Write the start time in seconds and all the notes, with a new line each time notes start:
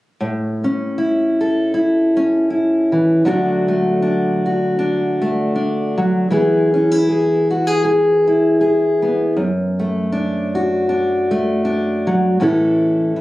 0.20 A2
0.64 C#4
0.98 E4
1.41 A4
1.74 E4
2.17 C#4
2.50 E4
2.92 E3
3.25 D3 F#3 A3 D4 F#4
3.68 A3
4.02 D4
4.46 F#4
4.79 D4
5.22 A3
5.56 D4
5.98 F#3
6.31 E3 B3 E4 G#4
6.74 C#4
6.91 E4
7.09 G#4
7.51 F#4
7.67 G#4
7.85 G#4
8.27 E4
8.61 G#4
9.02 B3
9.37 F#2
9.79 A3
10.12 D4
10.55 F#4
10.89 D4
11.31 A3
11.65 D4
12.07 F#3
12.40 A2 E3 C#4 E4 A4
13.16 E3